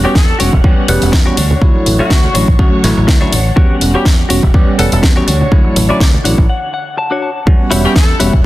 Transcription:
Already playing: string machine G3 C#4 F#5
0.04 tine electric piano G3 B3 C#4 F#4, clean electric guitar F#4 G4 C#5, horn section G4, muted fingered electric bass stroke, tambourine
0.15 fingered electric bass E2, horn section A4, kick, snare, tambourine, high conga
0.28 muted clean electric guitar stroke
0.39 fingered electric bass E1, tine electric piano G3 B3 C#4 F#4, clean electric guitar F#4 G4 C#5, open hi-hat, tambourine
0.53 fingered electric bass E1, kick, tambourine, high conga
0.63 fingered electric bass E2, tine electric piano G3 B3 C#4 G4, muted clean electric guitar stroke, kick, tambourine
0.78 muted fingered electric bass stroke
0.88 fingered electric bass E1, tine electric piano G3 B3 C#4 F#5, open hi-hat, tambourine
1.02 fingered electric bass E1, open hi-hat, tambourine, high conga
1.12 fingered electric bass E2, muted clean electric guitar stroke, kick, snare
1.26 tine electric piano G3 B3 C#4 F#4, clean electric guitar F#4 G4 C#5
1.37 fingered electric bass D2, string machine D3 C#5 F#5, clean electric guitar D4 F#4 C#5, open hi-hat, tambourine, high conga
1.50 tambourine, low conga
1.61 fingered electric bass D2, tine electric piano F#3 A3 E4 C#5, kick, tambourine
1.75 high conga
1.86 fingered electric bass A1, open hi-hat, tambourine, low conga
1.99 tine electric piano F#3 A3 C#4 E4, clean electric guitar D4 F#4 C#5, horn section F#4, muted fingered electric bass stroke, tambourine
2.10 fingered electric bass D2, kick, snare, tambourine, high conga
2.23 muted clean electric guitar stroke, low conga
2.34 fingered electric bass A1, tine electric piano F#3 A3 C#4 E4, clean electric guitar D4 F#4 C#5, open hi-hat, tambourine
2.48 fingered electric bass A1, kick, tambourine, high conga
2.59 fingered electric bass D2, tine electric piano F#3 A3 C#4 F#4, muted clean electric guitar stroke, kick, tambourine
2.73 muted fingered electric bass stroke
2.83 fingered electric bass A1, tine electric piano F#3 A3 E4 C#5, snare, open hi-hat, tambourine
2.97 fingered electric bass A1, tambourine, high conga
3.07 fingered electric bass D2, muted clean electric guitar stroke, kick, snare
3.21 tine electric piano F#3 A3 C#4 E4, clean electric guitar D4 F#4 C#5
3.32 fingered electric bass A1, open hi-hat, tambourine, high conga
3.46 tambourine
3.56 fingered electric bass E2, tine electric piano G3 B3 C#4 F#5, string machine G3 C#4, clean electric guitar F#4 G4 C#5, kick, tambourine
3.70 high conga
3.81 fingered electric bass E1, open hi-hat, tambourine
3.94 tine electric piano G3 B3 C#4 F#4, clean electric guitar F#4 G4 C#5, horn section G4, muted fingered electric bass stroke
4.05 fingered electric bass E2, kick, snare, tambourine, high conga
4.18 muted clean electric guitar stroke
4.29 fingered electric bass E1, tine electric piano G3 B3 C#4 F#4, clean electric guitar F#4 G4 C#5, open hi-hat, tambourine
4.43 fingered electric bass E1, kick, tambourine, high conga
4.53 fingered electric bass E2, tine electric piano G3 B3 C#4 G4, muted clean electric guitar stroke, kick, tambourine
4.68 muted fingered electric bass stroke
4.79 fingered electric bass E1, tine electric piano G3 B3 C#4 F#5, horn section A4, open hi-hat, tambourine
4.92 fingered electric bass E1, horn section A4, open hi-hat, tambourine, high conga
5.02 fingered electric bass E2, muted clean electric guitar stroke, kick, snare
5.16 tine electric piano G3 B3 C#4 F#4, clean electric guitar F#4 G4 C#5, tambourine
5.27 fingered electric bass D2, string machine D3 C#5, clean electric guitar D4 F#4 C#5, open hi-hat, tambourine, high conga
5.41 tambourine, low conga
5.52 fingered electric bass D2, tine electric piano F#3 A3 E4 C#5, kick, tambourine
5.64 muted fingered electric bass stroke, high conga
5.76 fingered electric bass A1, open hi-hat, tambourine, low conga
5.89 tine electric piano F#3 A3 C#4 E4, clean electric guitar D4 F#4 C#5, horn section D5, muted fingered electric bass stroke, tambourine
6.00 fingered electric bass D2, horn section D5, kick, snare, tambourine, high conga
6.13 muted clean electric guitar stroke, tambourine, low conga
6.24 fingered electric bass A1, tine electric piano F#3 A3 C#4 E4, clean electric guitar D4 F#4 C#5 D5, open hi-hat, tambourine
6.38 fingered electric bass A1, kick, tambourine, high conga
6.49 clean electric guitar F#5, muted clean electric guitar stroke
6.74 clean electric guitar F#5
6.97 clean electric guitar A5, muted clean electric guitar stroke
7.11 clean electric guitar D4 F#4 C#5
7.22 clean electric guitar A5
7.47 fingered electric bass E2, tine electric piano G3 B3 C#4 F#4, string machine G3 C#4 F#5, kick
7.71 fingered electric bass E1, clean electric guitar E4 F#4 G4 C#5, open hi-hat
7.85 tine electric piano G3 B3 C#4 F#4, horn section G4, muted fingered electric bass stroke
7.96 fingered electric bass E2, horn section A4, kick, snare
8.20 fingered electric bass E1, tine electric piano G3 B3 C#4 F#4, clean electric guitar E4 F#4 G4 C#5, open hi-hat
8.33 fingered electric bass E1, kick

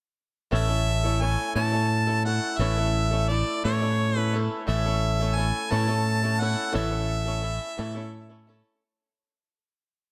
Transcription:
0.51 fingered electric bass A1, steel-string acoustic guitar A2 E3 A3 C#4 E4 A4, harmonica E5
0.68 steel-string acoustic guitar A3 C#4 E4 A4
1.03 steel-string acoustic guitar A3 C#4 E4 A4
1.21 steel-string acoustic guitar A3 C#4 E4 A4, harmonica G#5
1.55 steel-string acoustic guitar A2 E3 A3 C#4 E4 A4, fingered electric bass A2, harmonica A5
1.72 steel-string acoustic guitar A3 C#4 E4 A4
2.07 steel-string acoustic guitar A3 C#4 E4 A4
2.25 steel-string acoustic guitar A3 C#4 E4 A4, harmonica F#5
2.58 fingered electric bass A1, steel-string acoustic guitar A2 E3 A3 C#4 E4 A4, harmonica E5
2.77 steel-string acoustic guitar A3 C#4 E4 A4
3.11 steel-string acoustic guitar A3 C#4 E4 A4
3.28 steel-string acoustic guitar A3 E4 A4, harmonica D5
3.64 steel-string acoustic guitar A2 E3 A3 C#4 E4 A4, fingered electric bass A2, harmonica C#5
3.81 steel-string acoustic guitar A3 C#4 E4 A4
4.16 steel-string acoustic guitar A3 C#4 E4 A4, harmonica B4
4.33 steel-string acoustic guitar A3 C#4 E4 A4
4.67 fingered electric bass A1, steel-string acoustic guitar A2 E3 A3 C#4 E4 A4, harmonica E5
4.86 steel-string acoustic guitar A3 C#4 E4 A4
5.20 steel-string acoustic guitar A3 C#4 E4 A4
5.36 steel-string acoustic guitar A3 C#4 E4 A4, harmonica G#5
5.71 steel-string acoustic guitar A2 E3 A3 C#4 E4 A4, fingered electric bass A2, harmonica A5
5.88 steel-string acoustic guitar A3 C#4 E4 A4
6.23 steel-string acoustic guitar A3 C#4 E4 A4
6.40 steel-string acoustic guitar A3 C#4 E4 A4, harmonica F#5
6.73 fingered electric bass A1, steel-string acoustic guitar A2 E3 A3 C#4 E4 A4, harmonica E5
6.91 steel-string acoustic guitar A3 C#4 E4 A4
7.25 steel-string acoustic guitar A3 C#4 E4 A4
7.42 steel-string acoustic guitar A3 C#4 E4 A4
7.78 steel-string acoustic guitar A2 E3 A3 C#4 E4 A4, fingered electric bass A2
7.95 steel-string acoustic guitar A3 C#4 E4 A4
8.29 steel-string acoustic guitar A3 C#4 E4 A4
8.47 steel-string acoustic guitar A3 C#4 E4 A4

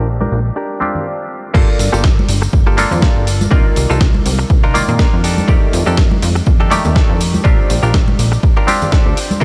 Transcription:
Already playing: analog synth bass A#1, clav C4 D4 F4 G4
0.08 tambourine
0.21 clean electric guitar D4 G4 A#4, high conga
0.32 analog synth bass A#1, tambourine
0.45 tambourine
0.56 clean electric guitar D4 G4 A#4, tambourine
0.80 clav C4 D4 F4 G4, tambourine, high conga
0.95 tambourine, low conga
1.54 analog synth bass G1, clav A#3 D4 F4 A4, clean electric guitar A#3 F4 G4 A4, kick, crash, tambourine
1.79 analog synth bass G1, muted clean electric guitar stroke, open hi-hat, tambourine
1.92 analog synth bass G1, clean electric guitar A#3 F4 G4 A4, tambourine
2.04 kick, snare
2.17 muted clean electric guitar stroke, high conga
2.29 analog synth bass G1, open hi-hat, tambourine
2.42 muted clean electric guitar stroke, tambourine
2.53 analog synth bass G1, muted clean electric guitar stroke, kick, tambourine
2.67 clean electric guitar A#3 F4 G4 A4
2.77 clav A#3 D4 F4 A4, open hi-hat, tambourine, high conga
2.91 analog synth bass F2, muted clean electric guitar stroke, tambourine, low conga
3.02 clean electric guitar A#3 F4 G4 A4, kick, snare, tambourine
3.16 analog synth bass G1
3.27 open hi-hat, tambourine
3.41 tambourine, high conga
3.51 analog synth bass C2, clav D#3 A#3 F4 D5, clean electric guitar D4 D#4 F4 A#4, kick, tambourine
3.66 analog synth bass C2
3.76 analog synth bass C2, muted clean electric guitar stroke, open hi-hat, tambourine
3.90 analog synth bass C2, clean electric guitar D4 D#4 F4 A4, tambourine
4.01 kick, snare
4.14 muted clean electric guitar stroke, high conga
4.26 analog synth bass C2, open hi-hat, tambourine
4.39 muted clean electric guitar stroke, tambourine
4.50 analog synth bass C2, muted clean electric guitar stroke, kick, tambourine
4.64 clean electric guitar D4 D#4 F4 A#4
4.74 clav D#3 A#3 F4 D5, open hi-hat, tambourine, high conga
4.88 analog synth bass A#2, muted clean electric guitar stroke, tambourine, low conga
4.99 clean electric guitar D4 D#4 F4 A#4, kick, snare, tambourine
5.13 analog synth bass F2
5.24 clean electric guitar D4 D#4 G4 A4, open hi-hat, tambourine
5.37 tambourine, high conga
5.48 analog synth bass F2, clav D#3 A3 G4 D5, kick, tambourine
5.73 analog synth bass F2, muted clean electric guitar stroke, open hi-hat, tambourine
5.86 analog synth bass F2, clean electric guitar D4 D#4 G4 A4, tambourine
5.97 kick, snare, tambourine
6.11 muted clean electric guitar stroke, high conga
6.22 analog synth bass F2, open hi-hat, tambourine
6.35 muted clean electric guitar stroke, tambourine
6.46 analog synth bass F2, muted clean electric guitar stroke, kick, tambourine
6.60 clean electric guitar D4 D#4 G4 A4
6.70 clav D#3 A3 G4 D5, open hi-hat, tambourine, high conga
6.85 analog synth bass D#2, muted clean electric guitar stroke, tambourine, low conga
6.96 clean electric guitar D4 D#4 G4 A4, kick, snare, tambourine
7.09 analog synth bass F2
7.21 open hi-hat, tambourine
7.34 tambourine, high conga
7.44 analog synth bass A#1, clav C4 D4 F4 G4, clean electric guitar D4 F4 G4 A#4, kick, tambourine
7.59 analog synth bass A#1
7.69 analog synth bass A#1, muted clean electric guitar stroke, open hi-hat, tambourine
7.83 analog synth bass A#1, clean electric guitar D4 F4 G4 A#4, tambourine
7.94 kick, snare, tambourine
8.07 muted clean electric guitar stroke, high conga
8.19 analog synth bass A#1, open hi-hat, tambourine
8.32 muted clean electric guitar stroke, tambourine
8.43 muted clean electric guitar stroke, kick, tambourine
8.57 clean electric guitar D4 F4 G4 A#4
8.67 clav C4 D4 F4 G4, open hi-hat, tambourine, high conga
8.82 muted clean electric guitar stroke, tambourine, low conga
8.92 clean electric guitar D4 F4 G4 A4, kick, snare, tambourine
9.06 analog synth bass D2
9.17 open hi-hat, tambourine
9.31 tambourine, high conga
9.40 analog synth bass G1, clav A#3 D4 F4, clean electric guitar A#3, kick, tambourine

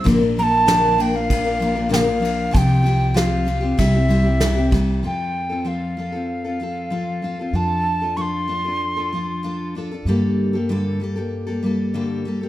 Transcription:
0.04 upright bass A#1, steel-string acoustic guitar A#2 D3 F3 A#3 D4 A#4, kick, ride
0.20 steel-string acoustic guitar F3 A#3 D4 A#4
0.37 steel-string acoustic guitar F3 A#3 D4 A#4, recorder A#5, ride
0.43 recorder A5
0.66 steel-string acoustic guitar A#2 D3 F3 A#3 D4 A#4, snare, ride
0.98 steel-string acoustic guitar F3 A#3 D4 A#4, recorder G5, ride
1.14 steel-string acoustic guitar F3 A#3 D4 A#4, recorder F5
1.30 kick, ride
1.45 steel-string acoustic guitar F3 A#3 D4 A#4
1.60 steel-string acoustic guitar F3 A#3 D4 A#4, ride
1.75 steel-string acoustic guitar F3 A#3 D4 A#4
1.89 steel-string acoustic guitar A#2 D3 F3 A#3 D4 A#4, recorder G5
1.94 recorder F5, snare, ride
2.05 steel-string acoustic guitar F3 A#3 D4 A#4
2.20 steel-string acoustic guitar F3 A#3 D4 A#4
2.25 ride
2.51 upright bass C2, steel-string acoustic guitar C3 F3 C4 F4 G4, recorder A5, kick
2.55 recorder G5, ride
2.83 steel-string acoustic guitar F3 C4 F4 G4, ride
3.14 steel-string acoustic guitar C3 F3 C4 F4 G4, recorder F5, snare, ride
3.45 steel-string acoustic guitar F3 C4 F4 G4, ride
3.61 steel-string acoustic guitar C4 F4 G4
3.78 upright bass C2, steel-string acoustic guitar C3 G3 C4 E4 G4, recorder E5, kick, ride
3.94 steel-string acoustic guitar C4 E4 G4
4.09 steel-string acoustic guitar G3 C4 E4 G4, ride
4.24 steel-string acoustic guitar C4 E4 G4
4.40 steel-string acoustic guitar C3 G3 C4 E4 G4, snare, ride
4.56 steel-string acoustic guitar C4 E4 G4
4.71 steel-string acoustic guitar G3 C4 E4 G4, kick, ride
5.03 upright bass F2, steel-string acoustic guitar F3 C4 F4 A4, recorder G5
5.49 steel-string acoustic guitar C4 F4 A4
5.65 steel-string acoustic guitar F3 C4 F4 A4, recorder F5
5.97 steel-string acoustic guitar F3 C4 F4 A4
6.12 steel-string acoustic guitar C4 F4 A4
6.44 steel-string acoustic guitar C4 F4 A4
6.60 steel-string acoustic guitar F3 C4 F4 A4
6.90 steel-string acoustic guitar F3 C4 F4 A4
7.22 steel-string acoustic guitar F3 C4 F4 A4
7.39 steel-string acoustic guitar C4 F4 A4
7.53 upright bass F2, steel-string acoustic guitar F3 D4 F4 A4, recorder A5
8.02 steel-string acoustic guitar D4 F4 A4
8.17 steel-string acoustic guitar F3 D4 F4 A4, recorder C#6
8.21 recorder C6
8.48 steel-string acoustic guitar F3 D4 F4 A4
8.64 steel-string acoustic guitar D4 F4 A4
8.97 steel-string acoustic guitar D4 F4 A4
9.13 steel-string acoustic guitar F3 D4 F4 A4
9.43 steel-string acoustic guitar F3 D4 F4 A4
9.75 steel-string acoustic guitar F3 D4 F4 A4
9.91 steel-string acoustic guitar D4 F4 A4
10.05 upright bass G2, steel-string acoustic guitar G2 D3 G3 A#3 G4 A4
10.53 steel-string acoustic guitar G3 A#3 G4 A4
10.69 steel-string acoustic guitar G2 D3 G3 A#3 G4 A4
11.00 steel-string acoustic guitar G3 A#3 G4 A4
11.16 steel-string acoustic guitar G3 A#3 G4 A4
11.47 steel-string acoustic guitar G3 A#3 G4 A4
11.63 steel-string acoustic guitar G3 A#3 G4 A4
11.94 steel-string acoustic guitar G2 D3 G3 A#3 G4 A4
12.25 steel-string acoustic guitar G3 A#3 G4 A4
12.41 steel-string acoustic guitar G3 A#3 G4 A4

